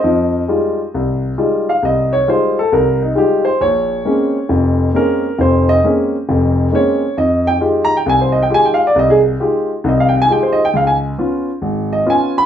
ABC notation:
X:1
M:4/4
L:1/16
Q:"Swing" 1/4=135
K:Fm
V:1 name="Grand piano"
e8- e z4 z f2 | e2 d2 c2 =A2 B2 E2 G2 c2 | d8 z4 B4 | c2 e2 z8 d4 |
e2 g2 z2 b g a c e g a g f =d | e A z6 e f g a g c e g | f a z8 e2 a2 _c'2 |]
V:2 name="Grand piano"
[F,,F,]4 [G,A,EF]2 z2 C,,4 [G,A,EF]2 z2 | C,,4 [G,A,EF]2 z2 C,,4 [G,A,EF]2 z2 | B,,,4 [A,B,CD]2 z2 [F,,,F,,]4 [A,B,CD]2 z2 | [F,,,F,,]4 [A,B,CD]2 z2 [F,,,F,,]4 [A,B,CD]2 z2 |
F,,4 [A,EFG]2 z2 C,,4 [A,EFG]2 z2 | C,,4 [A,EFG]2 z2 [C,,C,]4 [A,EFG]2 z2 | D,,4 [_CDF]2 z2 A,,,4 [CDF]2 z2 |]